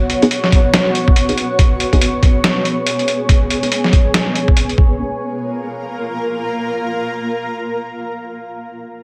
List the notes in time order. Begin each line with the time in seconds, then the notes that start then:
Already playing: B3 F#4 C#5
0.10 closed hi-hat
0.22 B3 D#4 G#4, closed hi-hat
0.31 closed hi-hat
0.44 snare
0.52 kick, closed hi-hat
0.74 snare, closed hi-hat
0.95 closed hi-hat
1.08 kick
1.16 closed hi-hat
1.29 B3 D#4 G#4, closed hi-hat
1.38 closed hi-hat
1.59 G#4, kick, closed hi-hat
1.80 closed hi-hat
1.93 B3 D#4 G#4, kick, closed hi-hat
2.01 closed hi-hat
2.23 kick, closed hi-hat
2.44 snare, closed hi-hat
2.65 closed hi-hat
2.87 closed hi-hat
2.99 closed hi-hat
3.08 closed hi-hat
3.29 kick, closed hi-hat
3.50 closed hi-hat
3.63 B3 D#4 G#4, closed hi-hat
3.72 closed hi-hat
3.84 snare
3.93 kick, closed hi-hat
4.14 snare, closed hi-hat
4.35 closed hi-hat
4.48 kick
4.57 closed hi-hat
4.69 closed hi-hat
4.78 A#3 C#4 F4 G#4 A#4, kick